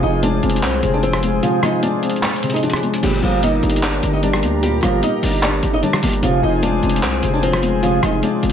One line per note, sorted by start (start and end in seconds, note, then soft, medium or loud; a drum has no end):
0.00 0.41 F1 loud
0.00 0.82 C3 medium
0.00 1.01 F3 medium
0.00 0.19 D#4 medium
0.00 3.00 F4 medium
0.00 3.00 G#4 medium
0.00 3.00 C5 medium
0.00 0.19 D#5 medium
0.00 3.00 G#5 medium
0.23 1.22 G#3 medium
0.23 0.60 D4 medium
0.23 0.61 D5 medium
0.23 closed hi-hat medium
0.43 0.64 F1 loud
0.43 1.43 C4 medium
0.43 closed hi-hat soft
0.50 closed hi-hat medium
0.56 closed hi-hat medium
0.63 0.82 C2 loud
0.63 0.92 C4 medium
0.63 1.63 C5 medium
0.63 0.92 C5 medium
0.63 clap loud
0.83 1.40 F1 loud
0.83 1.41 C3 medium
0.83 closed hi-hat medium
0.93 1.01 D4 medium
0.93 1.02 D5 medium
1.03 1.61 F3 medium
1.03 1.40 C4 medium
1.03 1.41 C5 medium
1.03 closed hi-hat medium
1.13 cross-stick medium
1.23 1.81 G#3 medium
1.23 closed hi-hat medium
1.43 2.42 C3 medium
1.43 1.59 F3 medium
1.43 1.59 F4 loud
1.43 closed hi-hat medium
1.63 2.61 F3 medium
1.63 1.79 D#4 medium
1.63 1.79 D#5 medium
1.63 cross-stick medium
1.63 closed hi-hat medium
1.82 2.81 G#3 medium
1.82 2.20 D4 medium
1.82 2.21 D5 medium
1.82 closed hi-hat medium
2.03 3.03 C4 medium
2.03 closed hi-hat medium
2.10 closed hi-hat medium
2.16 closed hi-hat soft
2.23 2.52 C4 medium
2.23 3.03 C5 loud
2.23 2.52 C5 medium
2.23 clap loud
2.23 closed hi-hat soft
2.30 closed hi-hat medium
2.36 closed hi-hat medium
2.43 3.03 C3 medium
2.43 closed hi-hat medium
2.50 2.61 D#4 medium
2.50 closed hi-hat medium
2.54 2.62 D#5 medium
2.54 closed hi-hat medium
2.63 3.03 F3 medium
2.63 3.01 D4 medium
2.63 3.01 D5 medium
2.63 closed hi-hat medium
2.70 cross-stick medium
2.70 closed hi-hat medium
2.76 closed hi-hat medium
2.83 3.03 G#3 medium
2.83 closed hi-hat soft
2.94 closed hi-hat medium
3.03 3.22 G1 loud
3.03 4.03 A#2 medium
3.03 3.20 G3 medium
3.03 6.20 G4 medium
3.03 3.19 G4 medium
3.03 6.20 A#4 medium
3.03 6.20 A#5 loud
3.03 closed hi-hat medium
3.03 crash loud
3.22 3.61 G1 loud
3.22 3.40 F3 medium
3.22 4.22 G3 medium
3.22 3.39 F4 medium
3.42 4.41 A#3 medium
3.42 3.81 D#4 loud
3.42 3.81 D#5 medium
3.42 closed hi-hat medium
3.62 4.01 G1 loud
3.62 4.63 D4 medium
3.62 closed hi-hat soft
3.70 closed hi-hat medium
3.76 closed hi-hat medium
3.83 4.12 D4 loud
3.83 4.83 D5 loud
3.83 4.12 D5 medium
3.83 clap loud
4.02 4.44 G1 loud
4.02 5.03 D3 medium
4.02 closed hi-hat medium
4.13 4.21 D#4 medium
4.13 4.21 D#5 medium
4.23 4.81 G3 medium
4.23 4.61 D4 medium
4.23 4.61 D5 medium
4.23 closed hi-hat medium
4.33 cross-stick medium
4.43 4.81 D2 loud
4.43 5.03 A#3 medium
4.43 closed hi-hat medium
4.63 5.63 A#2 medium
4.63 4.79 G3 medium
4.63 4.79 G4 loud
4.63 closed hi-hat medium
4.83 5.02 G1 loud
4.83 5.00 F3 medium
4.83 5.82 G3 medium
4.83 4.99 F4 medium
4.83 cross-stick medium
4.83 closed hi-hat medium
5.03 6.01 A#3 medium
5.03 5.40 D#4 medium
5.03 5.41 D#5 medium
5.03 closed hi-hat medium
5.23 5.61 G1 loud
5.23 6.23 D4 medium
5.23 open hi-hat medium
5.42 5.72 D4 medium
5.42 6.23 D5 loud
5.42 5.72 D5 medium
5.42 clap loud
5.63 5.82 G1 loud
5.63 6.23 D3 medium
5.63 closed hi-hat medium
5.73 5.81 D#4 medium
5.73 5.81 D#5 medium
5.83 6.23 G3 medium
5.83 6.21 D4 medium
5.83 6.21 D5 medium
5.83 closed hi-hat medium
5.93 cross-stick medium
6.03 6.22 G1 loud
6.03 6.23 A#3 medium
6.03 closed hi-hat medium
6.03 open hi-hat medium
6.13 closed hi-hat medium
6.23 6.42 F1 loud
6.23 7.21 C3 loud
6.23 6.40 F3 medium
6.23 8.53 F4 medium
6.23 6.39 F4 medium
6.23 8.53 G#4 medium
6.23 8.53 C5 medium
6.23 8.53 G#5 medium
6.23 closed hi-hat medium
6.43 6.81 F1 loud
6.43 7.41 F3 medium
6.43 6.59 D#4 medium
6.43 6.59 D#5 medium
6.62 7.62 G#3 medium
6.62 7.00 D4 medium
6.62 7.01 D5 medium
6.62 closed hi-hat medium
6.83 7.04 F1 loud
6.83 7.83 C4 medium
6.83 closed hi-hat soft
6.89 closed hi-hat medium
6.96 closed hi-hat medium
7.03 7.22 C2 loud
7.03 7.31 C4 loud
7.03 8.03 C5 loud
7.03 7.32 C5 medium
7.03 clap loud
7.03 closed hi-hat medium
7.23 8.00 F1 loud
7.23 7.81 C3 medium
7.23 closed hi-hat medium
7.33 7.41 D4 medium
7.33 7.41 D5 medium
7.42 8.01 F3 medium
7.42 7.81 C4 medium
7.42 7.81 C5 medium
7.42 closed hi-hat medium
7.53 cross-stick loud
7.63 8.21 G#3 medium
7.63 closed hi-hat medium
7.83 8.53 C3 medium
7.83 7.99 F3 medium
7.83 7.99 F4 loud
7.83 closed hi-hat medium
8.03 8.22 F1 loud
8.03 8.53 F3 medium
8.03 8.19 D#4 medium
8.03 8.19 D#5 medium
8.03 cross-stick medium
8.03 closed hi-hat medium
8.22 8.53 G#3 medium
8.22 8.53 D4 medium
8.22 8.53 D5 medium
8.22 closed hi-hat medium
8.43 8.53 F1 loud
8.43 8.53 C4 medium
8.43 closed hi-hat medium